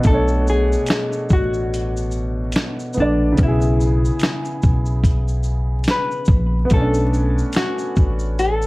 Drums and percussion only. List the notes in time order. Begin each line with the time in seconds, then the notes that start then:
0.04 kick, closed hi-hat, shaker
0.28 shaker
0.47 shaker
0.72 shaker
0.86 finger snap, snare, closed hi-hat, shaker
1.13 shaker
1.29 kick, shaker
1.54 shaker
1.74 closed hi-hat, shaker
1.97 shaker
2.11 shaker
2.52 finger snap, snare, closed hi-hat, shaker
2.80 shaker
2.93 shaker
3.38 kick, closed hi-hat, shaker
3.61 shaker
3.81 shaker
4.05 shaker
4.19 finger snap, snare, closed hi-hat, shaker
4.45 shaker
4.62 kick, shaker
4.86 shaker
5.04 kick, closed hi-hat, shaker
5.28 shaker
5.43 shaker
5.84 snare, closed hi-hat, shaker
5.88 finger snap
6.11 shaker
6.25 kick, shaker
6.70 kick, closed hi-hat, shaker
6.94 shaker
7.14 shaker
7.38 shaker
7.53 finger snap, snare, closed hi-hat, shaker
7.79 shaker
7.96 kick, shaker
8.19 shaker
8.39 closed hi-hat, shaker
8.62 shaker